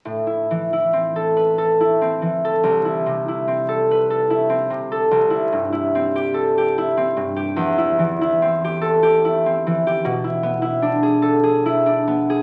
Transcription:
\new Staff \with { instrumentName = "Harp" } { \time 6/8 \key a \minor \tempo 4. = 48 << { r4. b'8 r4 | r4. b'8 r4 | r4. a'8 r4 | r4. a'8 r4 |
r4. a'8 r4 | } \\ { a,16 e'16 e16 e'16 c'16 a'8 a'16 e'16 c'16 e16 a'16 | c,16 e'16 c16 e'16 c'16 a'8 a'16 e'16 c'16 c16 a'16 | c,16 e'16 g,16 e'16 c'16 g'8 g'16 e'16 c'16 g,16 g'16 | e,16 e'16 e16 e'16 c'16 g'8 g'16 e'16 c'16 e16 g'16 |
b,16 e'16 b16 e'16 d'16 gis'8 gis'16 e'16 d'16 b16 gis'16 | } >> }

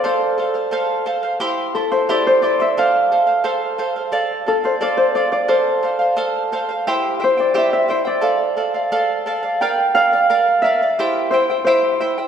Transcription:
<<
  \new Staff \with { instrumentName = "Charango" } { \time 2/4 \key f \major \tempo 4 = 88 <a' c'' f''>8 <a' c'' f''>16 <c'' f''>16 <a' c'' f''>8 <a' c'' f''>16 <c'' f''>16 | <e' g' c'' e'' c'''>8 <e' c'' e'' c'''>16 <e' e'' c'''>16 <e' g' c'' e'' c'''>8 <e' c'' e'' c'''>16 <e' e'' c'''>16 | <a' c'' f''>8 <a' c'' f''>16 <c'' f''>16 <a' c'' f''>8 <a' c'' f''>16 <c'' f''>16 | <a' d'' f''>8 <a' d'' f''>16 <d'' f''>16 <a' d'' f''>8 <a' d'' f''>16 <d'' f''>16 |
<a' c'' f''>8 <a' c'' f''>16 <c'' f''>16 <a' c'' f''>8 <a' c'' f''>16 <c'' f''>16 | <e' g' c'' e'' g''>8 <e' c'' e'' g''>16 <e' c'' g''>16 <e' g' c'' e'' g''>8 <e' c'' e'' g''>16 <e' c'' g''>16 | <a' d'' f''>8 <a' d'' f''>16 <d'' f''>16 <a' d'' f''>8 <a' d'' f''>16 <d'' f''>16 | <bes' d'' f''>8 <bes' d'' f''>16 <d'' f''>16 <bes' d'' f''>8 <bes' d'' f''>16 <d'' f''>16 |
<e' g' c'' e'' g''>8 <e' c'' e'' g''>16 <e' c'' g''>16 <e' g' c'' e'' g''>8 <e' c'' e'' g''>16 <e' c'' g''>16 | }
  \new Staff \with { instrumentName = "Harp" } { \time 2/4 \key f \major c''4. r8 | r8 a'16 c''16 d''16 c''16 d''16 e''16 | f''4. r8 | r8 a'16 c''16 d''16 c''16 d''16 d''16 |
c''4. r8 | r8 c''16 d''16 e''16 e''16 c''16 d''16~ | d''4. r8 | g''8 f''4 e''8~ |
e''8 c''8 c''8. r16 | }
>>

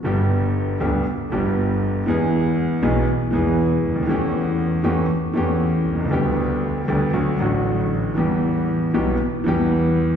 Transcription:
<<
  \new Staff \with { instrumentName = "Grand piano" } { \clef bass \time 4/4 \key g \major \tempo 4 = 118 << { <g,, g, d g b g'>4. <d, d g b g'>8 r8 <g,, g, d g b g'>4. | <e, e gis b gis'>4. <b,, b, e gis b gis'>8 r8 <e, e gis b gis'>4. | <e, e a cis' g'>4. <e, e a cis' g'>8 r8 <e, e a cis' g'>4. | <d, d g b g'>4. <d, d g b g'>8 <d, d fis a fis'>8 <a,, a, d fis a fis'>4. |
<e, e g b g'>4. <b,, b, e g b g'>8 r8 <e, e g b g'>4. | } \\ { r1 | r2. r8 r32 cis,32 d,32 ees,32 | r2. r8 r32 b,,32 c,32 cis,32 | r1 |
r1 | } >> }
  \new Staff \with { instrumentName = "Double bass" } { \clef bass \time 4/4 \key g \major g,,4. d,8 r8 g,,4. | e,4. b,,8 r8 e,4 d,8 | e,4. e,8 r8 e,4 c,8 | d,4. d,8 d,8 a,,4. |
e,4. b,,8 r8 e,4. | }
>>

